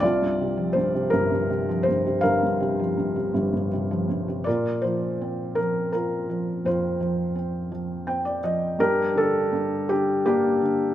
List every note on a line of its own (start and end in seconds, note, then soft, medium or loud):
0.00 2.18 C2 medium
0.00 1.09 F4 medium
0.00 0.77 D5 medium
0.22 0.74 G2 soft
0.41 0.93 C3 medium
0.57 1.67 F3 soft
0.73 1.12 G2 medium
0.73 1.12 C5 medium
0.95 1.48 C3 medium
1.10 2.22 G1 medium
1.10 1.30 G2 medium
1.10 1.87 A#4 medium
1.32 1.87 G2 soft
1.50 2.05 C3 medium
1.69 2.78 F3 medium
1.83 2.22 C5 medium
1.89 2.41 G2 soft
2.06 2.59 C3 soft
2.21 3.33 G1 medium
2.21 3.68 A#4 medium
2.21 3.67 F5 medium
2.43 2.96 G2 soft
2.60 3.14 C3 medium
2.79 3.89 F3 soft
2.97 3.33 G2 soft
3.16 3.71 C3 soft
3.34 4.42 G1 medium
3.34 3.52 G2 medium
3.53 4.08 G2 soft
3.73 4.26 C3 soft
3.91 4.45 F3 soft
4.09 4.45 G2 soft
4.28 4.46 C3 soft
4.44 6.62 A#2 soft
4.44 4.82 F4 medium
4.44 5.53 A#4 medium
4.44 4.83 D5 medium
4.82 5.57 F3 soft
4.82 5.90 F4 soft
4.82 5.59 C5 medium
5.21 5.93 C4 soft
5.55 6.28 F3 soft
5.55 5.91 A#4 medium
5.92 7.33 C4 soft
5.92 6.66 F4 medium
5.92 6.67 A#4 medium
6.30 6.99 F3 soft
6.65 8.75 F2 soft
6.65 8.40 F4 medium
6.65 8.39 C5 medium
7.00 7.70 F3 soft
7.35 8.06 C4 soft
7.72 8.42 F3 soft
8.07 8.77 C4 soft
8.07 8.24 G5 medium
8.25 8.42 D5 medium
8.44 8.79 F3 soft
8.44 8.77 D#5 medium
8.79 9.51 G2 medium
8.79 9.16 D4 medium
8.79 9.86 G4 medium
8.79 9.18 A#4 medium
9.15 9.89 D3 soft
9.15 10.23 D4 medium
9.15 9.92 A4 medium
9.52 10.24 G2 medium
9.89 10.60 D3 soft
9.89 10.24 G4 medium
10.26 10.94 G2 medium
10.26 10.94 A#3 medium
10.26 10.94 D4 medium
10.26 10.94 G4 medium
10.61 10.94 D3 soft